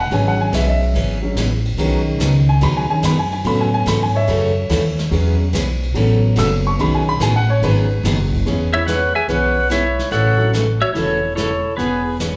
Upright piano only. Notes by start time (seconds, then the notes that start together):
0.00 F#5
0.12 F#3 G#3 C#4 G#5
0.28 F#5
0.41 G#5
0.55 E5
0.65 D#5
0.70 E5
1.22 F#3 G#3 C#4
1.78 D#3 G#3 C#4
2.49 G#5
2.63 B5
2.77 G#5
2.89 D#3 G#3 C#4 G#5
3.05 B5
3.19 G#5
3.33 G#5
3.45 F#3 B3 C#4 B5
3.61 G#5
3.74 G#5
3.88 B5
4.03 G#5
4.15 C#5 E5
5.11 F#3 G#3 C#4
5.94 F#3 B3 C#4
6.39 E6
6.67 C#6
6.79 D#3 G#3 C#4 B5
6.95 G#5
7.09 B5
7.22 G#5
7.36 F#5
7.50 C#5
7.62 D#3 G#3 C#4 B4
8.45 G#3 B3 C#4 E4 G#4
9.28 G#3 B3 C#4 E4 G#4
10.38 F#3 A3 C#4 E4 F#4